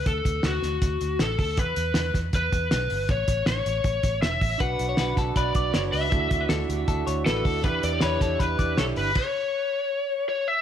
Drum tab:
CC |--------|--------|--------|--------|
HH |xxxxxxxo|xxxxxxxo|xxxxxxxo|xxxxxxxo|
SD |--oo--o-|--oo--o-|--o---o-|--oo--o-|
BD |oo--o--o|o--ooo--|oo--oo-o|o--ooo--|

CC |--------|--------|x-------|
HH |xxxxxxxo|xxxxxxxo|--------|
SD |--o---o-|--oo--o-|--------|
BD |oo--o--o|o--ooo--|o-------|